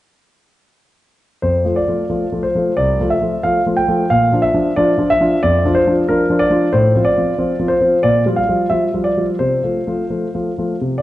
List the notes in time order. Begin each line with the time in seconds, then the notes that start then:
1.42 F2 C5
1.65 F3 A3 F4
1.76 D5
1.88 F3 A3 F4
2.10 F3 A3 F4
2.32 F3 A3 F4
2.43 C5
2.55 F3 A3 F4
2.77 C2 D5
3.00 F3 A3 F4
3.10 E5
3.22 F3 A3 F4
3.43 F3 A3 F4 F5
3.66 F3 A3 F4
3.77 G5
3.88 F3 A3 F4
4.10 A#2 F5
4.33 F3 D4 F4
4.42 E5
4.54 F3 D4 F4
4.76 F3 D4 F4 D5
4.98 F3 D4 F4
5.10 E5
5.20 F3 D4 F4
5.43 F2 D5
5.65 F3 D4 F4
5.75 C5
5.87 F3 D4 F4
6.09 F3 D4 F4 A#4
6.30 F3 D4 F4
6.39 D5
6.50 F3 D4 F4
6.73 A2 C5
6.96 F3 C4 F4
7.05 D5
7.17 F3 C4 F4
7.38 F3 C4 F4
7.59 F3 C4 F4
7.68 C5
7.80 F3 C4 F4
8.03 A#2 D5
8.26 F3 G3 F4
8.36 F5
8.49 F3 G3 F4
8.70 F3 G3 F4 E5
8.94 F3 G3 F4
9.04 D5
9.17 F3 G3 F4
9.39 C3 C5
9.63 F3 A3 F4
9.87 F3 A3 F4
10.10 F3 A3 F4
10.34 F3 A3 F4
10.58 F3 A3 F4
10.81 C3
10.98 D5